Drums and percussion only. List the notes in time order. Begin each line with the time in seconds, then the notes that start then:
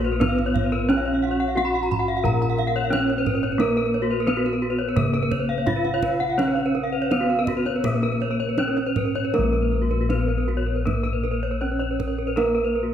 0.21 kendang high, kendang low
0.38 kendang slap
0.56 kendang slap, kendang low
0.90 kendang high
1.24 kendang slap
1.58 kendang high
1.75 kendang slap
1.92 kendang low
2.25 kendang low
2.42 kendang slap
2.60 kendang slap
2.93 kendang high
3.10 kendang slap
3.26 kendang slap, kendang low
3.44 kendang slap
3.60 kendang high
3.94 kendang slap
4.27 kendang high
4.45 kendang slap
4.96 kendang low
5.14 kendang slap
5.31 kendang slap, kendang low
5.67 kendang high, kendang low
5.85 kendang slap
6.02 kendang slap, kendang low
6.21 kendang slap
6.39 kendang high
6.57 kendang slap
6.75 kendang slap
7.11 kendang slap, kendang high
7.47 kendang low
7.66 kendang slap
7.84 kendang low
8.02 kendang slap
8.20 kendang slap
8.58 kendang high
8.78 kendang slap
8.96 kendang slap, kendang low
9.15 kendang slap
9.34 kendang high
9.91 kendang slap
10.10 kendang slap, kendang high
10.48 kendang slap
10.87 kendang slap, kendang high, kendang low
11.05 kendang slap
11.25 kendang slap
11.81 kendang slap
12.00 kendang slap, kendang low
12.37 kendang high